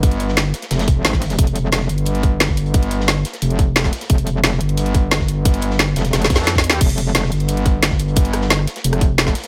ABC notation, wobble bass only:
X:1
M:4/4
L:1/8
Q:1/4=177
K:Fm
V:1 name="Wobble bass" clef=bass
G,,,3 z F,,,2 A,,,2 | F,,,3 G,,,4- G,,,- | G,,,3 z F,,,3 z | F,,,3 G,,,4- G,,,- |
G,,,3 F,,, F,,, F,,3 | F,,,3 G,,,4- G,,,- | G,,,3 z F,,,3 z |]